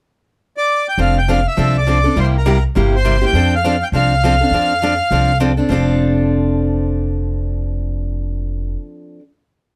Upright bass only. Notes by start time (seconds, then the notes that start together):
0.98 F1
1.58 C2
2.16 C2
2.76 G1
3.33 F2
3.92 C2
4.51 F2
5.11 C2
5.70 F1